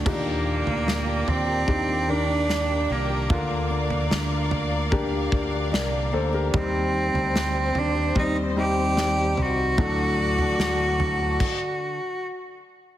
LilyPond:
<<
  \new Staff \with { instrumentName = "String section" } { \time 4/4 \key ees \lydian \tempo 4 = 74 << { <bes' d'''>1~ | <bes' d'''>1 | c''1 | <a' d'''>2 r2 | } \\ { <d'' g''>1 | <d'' f''>1 | r1 | <d'' fis''>2 r2 | } >> }
  \new Staff \with { instrumentName = "Cello" } { \time 4/4 \key ees \lydian bes4. c'4 d'4 bes8~ | bes8 r2. r8 | c'4. d'8 ees'8 g'4 fis'8~ | fis'2. r4 | }
  \new Staff \with { instrumentName = "Felt piano" } { \time 4/4 \key ees \lydian << { r1 | r2. <bes' d''>8 <a' c''>16 <g' bes'>16~ | <g' bes'>16 r2. r8. | r1 | } \\ { <d' ees' g'>2 <d' ees' g'>8 <ees d' bes'>4. | <bes d' f'>2 <bes d' g'>8 r4. | <g c' g'>2 <g c' d''>8 <g c' ees'>4. | <fis a d'>2 r2 | } >> }
  \new Staff \with { instrumentName = "Felt piano" } { \clef bass \time 4/4 \key ees \lydian bes,4. r2 r8 | d4. r2 r8 | ees'4. r2 r8 | a,4. r2 r8 | }
  \new Staff \with { instrumentName = "Steel-string acoustic guitar" } { \time 4/4 \key ees \lydian r16 bes16 d'16 bes16 d'16 g'16 bes16 g'16 ees16 bes16 d'16 bes16 d'16 g'16 bes16 g'16 | d16 bes16 d'16 bes16 d'16 bes'16 bes16 bes'16 d16 bes16 d'16 bes16 d'16 bes'16 bes16 bes'16 | r16 c'16 ees'16 c'8 g'16 c'16 g'16 ees16 c'16 ees'16 c'16 ees'16 g'16 c'16 g'16 | d16 d'16 fis'16 d'16 fis'16 a'16 d'16 a'16 r2 | }
  \new Staff \with { instrumentName = "Fingered electric bass" } { \clef bass \time 4/4 \key ees \lydian r8. d,8. ees,8 ees,4. c,8 | d,4 d,4. d,8 c,8 d,8 | ees,8. d,8. ees,8 ees,4. c,8 | d,4 d,4 r2 | }
  \new DrumStaff \with { instrumentName = "Drums" } \drummode { \time 4/4 <cymc bd tomfh>8. tomfh16 sn8 tomfh8 <bd tomfh>4 sn4 | <bd tomfh>8. tomfh16 sn8 tomfh8 <bd tomfh>8 bd8 sn4 | <bd tomfh>8. tomfh16 sn8 tomfh8 <bd tomfh>4 sn8 tomfh8 | <bd tomfh>8. tomfh16 sn8 tomfh8 <cymc bd>4 r4 | }
>>